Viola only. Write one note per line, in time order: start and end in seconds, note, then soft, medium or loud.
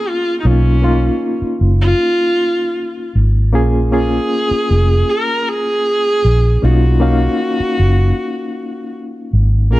0.00 0.11 G#4 medium
0.09 0.39 F4 medium
0.40 0.48 D#4 soft
0.46 1.42 C#4 medium
1.81 3.12 F4 loud
3.94 5.11 G#4 loud
5.10 5.51 A#4 medium
5.49 6.66 G#4 loud
6.65 8.96 F#4 medium
9.74 9.80 A#4 medium